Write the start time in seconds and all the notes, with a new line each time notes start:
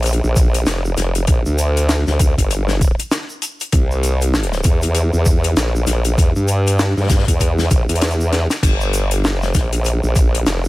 Already playing: A#1
0.03 closed hi-hat, shaker
0.06 closed hi-hat
0.13 closed hi-hat
0.24 A#1, shaker
0.36 kick, closed hi-hat, shaker
0.54 closed hi-hat, shaker
0.66 F1, snare, closed hi-hat, shaker
0.85 shaker
0.97 F1, snare, closed hi-hat, shaker
1.15 closed hi-hat, shaker
1.27 A#1, kick, closed hi-hat, shaker
1.46 D2, shaker
1.58 closed hi-hat, shaker
1.77 closed hi-hat, shaker
1.89 snare, closed hi-hat, shaker
2.07 D2, snare, shaker
2.19 kick, closed hi-hat, shaker
2.38 G1, kick, closed hi-hat, shaker
2.51 closed hi-hat, shaker
2.68 snare, shaker
2.81 kick, closed hi-hat, shaker
2.99 closed hi-hat, shaker
3.11 snare, closed hi-hat, shaker
3.29 shaker
3.42 closed hi-hat, shaker
3.60 closed hi-hat, shaker
3.72 C2, kick, closed hi-hat, shaker
3.91 shaker
4.03 closed hi-hat, shaker
4.21 closed hi-hat, shaker
4.34 snare, shaker
4.43 closed hi-hat
4.52 snare, shaker
4.64 E2, kick, closed hi-hat, shaker
4.82 closed hi-hat, shaker
4.95 closed hi-hat, shaker
5.13 E2, shaker
5.25 kick, shaker
5.44 closed hi-hat, shaker
5.56 A#1, snare, closed hi-hat, shaker
5.75 shaker
5.87 A#1, snare, closed hi-hat, shaker
6.05 closed hi-hat, shaker
6.18 E2, kick, closed hi-hat, shaker
6.36 G2, shaker
6.48 closed hi-hat, shaker
6.67 closed hi-hat, shaker
6.79 snare, closed hi-hat, shaker
6.97 G2, snare, shaker
7.00 snare
7.03 snare
7.06 snare
7.10 kick, snare, closed hi-hat, shaker
7.14 snare
7.19 snare
7.23 snare
7.28 E2, kick, closed hi-hat, shaker
7.40 kick, closed hi-hat, shaker
7.58 snare, shaker
7.71 A#1, kick, closed hi-hat, shaker
7.88 E2, closed hi-hat, shaker
7.91 shaker
7.96 closed hi-hat, shaker
8.01 snare, closed hi-hat, shaker
8.07 closed hi-hat, shaker
8.11 shaker
8.20 shaker
8.33 snare, closed hi-hat
8.50 snare, closed hi-hat, shaker
8.63 G1, kick, closed hi-hat, crash, shaker
8.81 shaker
8.93 closed hi-hat, shaker
9.11 closed hi-hat, shaker
9.24 F#1, snare, shaker
9.42 snare, shaker
9.54 A#1, kick, snare, closed hi-hat, shaker
9.73 closed hi-hat, shaker
9.84 closed hi-hat, shaker
10.03 A#1, shaker
10.16 kick, closed hi-hat, shaker
10.35 closed hi-hat
10.46 F1, snare, closed hi-hat, shaker
10.64 shaker